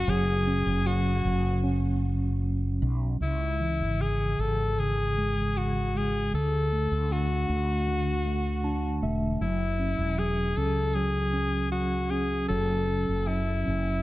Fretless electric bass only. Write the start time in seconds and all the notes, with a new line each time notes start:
0.08 F#1
0.66 F#1
1.25 F#1
2.82 B1
3.20 C#2
3.80 G#1
4.39 G#1
6.33 D2
6.91 D2
7.49 D2
9.02 E1
9.40 F#1
9.98 E1
10.57 C#2
12.50 F#1
13.09 F#1
13.67 F#1